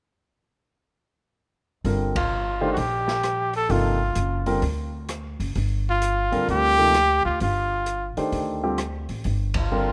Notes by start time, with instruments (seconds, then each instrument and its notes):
1.84 upright bass G1, grand piano D3 G3 C4 F4 A#4, open hi-hat
2.16 trumpet F4, kick, ride
2.61 grand piano D#3 A3 D4 G4 C5
2.73 trumpet F#4, open hi-hat
2.77 upright bass A#1, trumpet G4
3.08 snare
3.23 cross-stick, closed hi-hat
3.54 trumpet A4, open hi-hat
3.69 upright bass G1, grand piano C3 F3 A#3 D#4 A4, trumpet F4, open hi-hat
4.15 upright bass F#1, closed hi-hat
4.46 grand piano D3 G3 C4 F4 A#4, open hi-hat
4.62 upright bass D2, open hi-hat
5.09 cross-stick, closed hi-hat
5.40 upright bass F#1, open hi-hat
5.55 upright bass G1, open hi-hat
5.89 trumpet F4
6.02 closed hi-hat
6.32 upright bass D2, grand piano D3 G3 C4 F4 A#4, open hi-hat
6.49 upright bass D2, trumpet G4, open hi-hat
6.78 grand piano C3 F3 A#3 D#4 A4
6.94 cross-stick, closed hi-hat
7.25 upright bass D2, trumpet F4
7.40 upright bass G1, trumpet F4, open hi-hat
7.86 closed hi-hat
8.17 grand piano D#3 A3 D4 G4 C5, muted upright bass stroke, open hi-hat
8.32 upright bass D2, open hi-hat
8.63 grand piano D3 G3 C4 F4 G4
8.78 cross-stick, closed hi-hat
9.09 upright bass A1, open hi-hat
9.24 upright bass G1, open hi-hat
9.54 kick, ride
9.59 trumpet F4
9.72 grand piano D3 G3 C4 F4 A#4